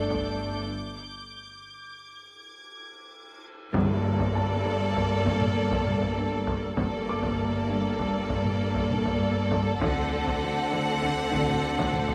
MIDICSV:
0, 0, Header, 1, 13, 480
1, 0, Start_track
1, 0, Key_signature, -2, "minor"
1, 0, Tempo, 606061
1, 568, Time_signature, 5, 2, 24, 8
1, 9620, End_track
2, 0, Start_track
2, 0, Title_t, "Violin section"
2, 0, Program_c, 0, 48
2, 0, Note_on_c, 0, 86, 44
2, 0, Note_on_c, 0, 91, 39
2, 1693, Note_off_c, 0, 91, 0
2, 1693, Note_on_c, 0, 92, 39
2, 2698, Note_off_c, 0, 92, 0
2, 2699, Note_off_c, 0, 86, 0
2, 9620, End_track
3, 0, Start_track
3, 0, Title_t, "Felt piano"
3, 0, Program_c, 1, 0
3, 0, Control_c, 1, 64, 127
3, 583, Control_c, 1, 64, 0
3, 728, Control_c, 1, 64, 127
3, 2983, Control_c, 1, 64, 0
3, 3100, Control_c, 1, 64, 127
3, 3448, Note_on_c, 1, 81, 56
3, 4856, Note_off_c, 1, 81, 0
3, 5618, Note_on_c, 1, 86, 58
3, 7021, Note_off_c, 1, 86, 0
3, 7781, Control_c, 1, 64, 0
3, 7920, Control_c, 1, 64, 127
3, 9620, End_track
4, 0, Start_track
4, 0, Title_t, "Violin section"
4, 0, Program_c, 2, 48
4, 0, Note_on_c, 2, 74, 59
4, 537, Note_off_c, 2, 74, 0
4, 2967, Note_on_c, 2, 74, 70
4, 5336, Note_off_c, 2, 74, 0
4, 5367, Note_on_c, 2, 74, 62
4, 7736, Note_off_c, 2, 74, 0
4, 7776, Note_on_c, 2, 78, 67
4, 9620, Note_off_c, 2, 78, 0
4, 9620, End_track
5, 0, Start_track
5, 0, Title_t, "Violin section"
5, 0, Program_c, 3, 48
5, 0, Note_on_c, 3, 69, 76
5, 530, Note_off_c, 3, 69, 0
5, 2966, Note_on_c, 3, 69, 69
5, 5335, Note_off_c, 3, 69, 0
5, 5363, Note_on_c, 3, 69, 68
5, 9620, Note_off_c, 3, 69, 0
5, 9620, End_track
6, 0, Start_track
6, 0, Title_t, "French horn section"
6, 0, Program_c, 4, 60
6, 0, Note_on_c, 4, 57, 70
6, 0, Note_on_c, 4, 62, 73
6, 529, Note_off_c, 4, 62, 0
6, 530, Note_off_c, 4, 57, 0
6, 9620, End_track
7, 0, Start_track
7, 0, Title_t, "Viola section"
7, 0, Program_c, 5, 48
7, 0, Note_on_c, 5, 62, 64
7, 532, Note_off_c, 5, 62, 0
7, 2970, Note_on_c, 5, 58, 66
7, 5337, Note_off_c, 5, 58, 0
7, 5371, Note_on_c, 5, 58, 65
7, 7737, Note_off_c, 5, 58, 0
7, 7783, Note_on_c, 5, 60, 64
7, 9620, Note_off_c, 5, 60, 0
7, 9620, End_track
8, 0, Start_track
8, 0, Title_t, "Cello section"
8, 0, Program_c, 6, 48
8, 79, Note_on_c, 6, 43, 49
8, 225, Note_off_c, 6, 43, 0
8, 321, Note_on_c, 6, 55, 29
8, 467, Note_off_c, 6, 55, 0
8, 2961, Note_on_c, 6, 43, 84
8, 3107, Note_off_c, 6, 43, 0
8, 3207, Note_on_c, 6, 43, 61
8, 3351, Note_off_c, 6, 43, 0
8, 3443, Note_on_c, 6, 43, 51
8, 3589, Note_off_c, 6, 43, 0
8, 3685, Note_on_c, 6, 43, 79
8, 3830, Note_off_c, 6, 43, 0
8, 3935, Note_on_c, 6, 43, 57
8, 4077, Note_off_c, 6, 43, 0
8, 4167, Note_on_c, 6, 43, 80
8, 4311, Note_off_c, 6, 43, 0
8, 4407, Note_on_c, 6, 43, 52
8, 4551, Note_off_c, 6, 43, 0
8, 4649, Note_on_c, 6, 43, 64
8, 4792, Note_off_c, 6, 43, 0
8, 4883, Note_on_c, 6, 43, 74
8, 5028, Note_off_c, 6, 43, 0
8, 5133, Note_on_c, 6, 43, 48
8, 5275, Note_off_c, 6, 43, 0
8, 5372, Note_on_c, 6, 43, 82
8, 5515, Note_off_c, 6, 43, 0
8, 5611, Note_on_c, 6, 43, 52
8, 5754, Note_off_c, 6, 43, 0
8, 5854, Note_on_c, 6, 43, 48
8, 5996, Note_off_c, 6, 43, 0
8, 6092, Note_on_c, 6, 43, 85
8, 6235, Note_off_c, 6, 43, 0
8, 6340, Note_on_c, 6, 43, 58
8, 6481, Note_off_c, 6, 43, 0
8, 6573, Note_on_c, 6, 43, 70
8, 6715, Note_off_c, 6, 43, 0
8, 6815, Note_on_c, 6, 43, 57
8, 6957, Note_off_c, 6, 43, 0
8, 7058, Note_on_c, 6, 43, 64
8, 7199, Note_off_c, 6, 43, 0
8, 7292, Note_on_c, 6, 43, 86
8, 7434, Note_off_c, 6, 43, 0
8, 7533, Note_on_c, 6, 43, 51
8, 7676, Note_off_c, 6, 43, 0
8, 7773, Note_on_c, 6, 50, 83
8, 7916, Note_off_c, 6, 50, 0
8, 8015, Note_on_c, 6, 50, 57
8, 8157, Note_off_c, 6, 50, 0
8, 8257, Note_on_c, 6, 50, 56
8, 8398, Note_off_c, 6, 50, 0
8, 8498, Note_on_c, 6, 50, 82
8, 8639, Note_off_c, 6, 50, 0
8, 8741, Note_on_c, 6, 50, 51
8, 8881, Note_off_c, 6, 50, 0
8, 8974, Note_on_c, 6, 50, 85
8, 9116, Note_off_c, 6, 50, 0
8, 9208, Note_on_c, 6, 50, 57
8, 9352, Note_off_c, 6, 50, 0
8, 9453, Note_on_c, 6, 50, 63
8, 9595, Note_off_c, 6, 50, 0
8, 9620, End_track
9, 0, Start_track
9, 0, Title_t, "Cello section"
9, 0, Program_c, 7, 48
9, 0, Note_on_c, 7, 43, 62
9, 537, Note_off_c, 7, 43, 0
9, 2964, Note_on_c, 7, 43, 70
9, 5334, Note_off_c, 7, 43, 0
9, 5374, Note_on_c, 7, 43, 74
9, 7739, Note_off_c, 7, 43, 0
9, 7774, Note_on_c, 7, 50, 65
9, 9620, Note_off_c, 7, 50, 0
9, 9620, End_track
10, 0, Start_track
10, 0, Title_t, "Timpani"
10, 0, Program_c, 8, 47
10, 2963, Note_on_c, 8, 43, 90
10, 3653, Note_off_c, 8, 43, 0
10, 9620, End_track
11, 0, Start_track
11, 0, Title_t, "Double bass section"
11, 0, Program_c, 10, 48
11, 0, Note_on_c, 10, 31, 60
11, 533, Note_off_c, 10, 31, 0
11, 2964, Note_on_c, 10, 31, 62
11, 5334, Note_off_c, 10, 31, 0
11, 5366, Note_on_c, 10, 31, 58
11, 7735, Note_off_c, 10, 31, 0
11, 7777, Note_on_c, 10, 38, 66
11, 9620, Note_off_c, 10, 38, 0
11, 9620, End_track
12, 0, Start_track
12, 0, Title_t, "Taiko and cinematic ensemble drums"
12, 83, Note_on_c, 9, 41, 77
12, 162, Note_off_c, 9, 41, 0
12, 2964, Note_on_c, 9, 41, 109
12, 3043, Note_off_c, 9, 41, 0
12, 3326, Note_on_c, 9, 41, 79
12, 3405, Note_off_c, 9, 41, 0
12, 3925, Note_on_c, 9, 41, 70
12, 4004, Note_off_c, 9, 41, 0
12, 4166, Note_on_c, 9, 41, 90
12, 4245, Note_off_c, 9, 41, 0
12, 4287, Note_on_c, 9, 45, 55
12, 4366, Note_off_c, 9, 45, 0
12, 4525, Note_on_c, 9, 41, 85
12, 4604, Note_off_c, 9, 41, 0
12, 4646, Note_on_c, 9, 45, 57
12, 4726, Note_off_c, 9, 45, 0
12, 4765, Note_on_c, 9, 41, 65
12, 4845, Note_off_c, 9, 41, 0
12, 5126, Note_on_c, 9, 41, 84
12, 5206, Note_off_c, 9, 41, 0
12, 5363, Note_on_c, 9, 41, 94
12, 5442, Note_off_c, 9, 41, 0
12, 5726, Note_on_c, 9, 41, 77
12, 5805, Note_off_c, 9, 41, 0
12, 6332, Note_on_c, 9, 41, 76
12, 6411, Note_off_c, 9, 41, 0
12, 6573, Note_on_c, 9, 41, 79
12, 6652, Note_off_c, 9, 41, 0
12, 6690, Note_on_c, 9, 45, 53
12, 6769, Note_off_c, 9, 45, 0
12, 6929, Note_on_c, 9, 41, 79
12, 7009, Note_off_c, 9, 41, 0
12, 7052, Note_on_c, 9, 45, 54
12, 7131, Note_off_c, 9, 45, 0
12, 7171, Note_on_c, 9, 41, 74
12, 7250, Note_off_c, 9, 41, 0
12, 7532, Note_on_c, 9, 41, 85
12, 7611, Note_off_c, 9, 41, 0
12, 7774, Note_on_c, 9, 41, 103
12, 7853, Note_off_c, 9, 41, 0
12, 8133, Note_on_c, 9, 41, 73
12, 8212, Note_off_c, 9, 41, 0
12, 8731, Note_on_c, 9, 41, 60
12, 8810, Note_off_c, 9, 41, 0
12, 8972, Note_on_c, 9, 41, 78
12, 9051, Note_off_c, 9, 41, 0
12, 9092, Note_on_c, 9, 45, 47
12, 9172, Note_off_c, 9, 45, 0
12, 9331, Note_on_c, 9, 41, 85
12, 9410, Note_off_c, 9, 41, 0
12, 9448, Note_on_c, 9, 45, 49
12, 9527, Note_off_c, 9, 45, 0
12, 9570, Note_on_c, 9, 41, 77
12, 9620, Note_off_c, 9, 41, 0
12, 9620, End_track
13, 0, Start_track
13, 0, Title_t, "Tam-tam"
13, 2964, Note_on_c, 9, 52, 67
13, 3043, Note_off_c, 9, 52, 0
13, 9620, End_track
0, 0, End_of_file